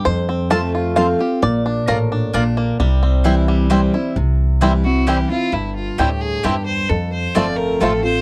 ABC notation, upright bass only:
X:1
M:3/4
L:1/8
Q:1/4=132
K:Cmix
V:1 name="Upright bass" clef=bass
F,,6 | B,,,2 A,,,2 B,,,2 | C,,6 | C,,6 |
G,,,2 D,,2 E,,2 | F,,2 G,,,2 A,,,2 |]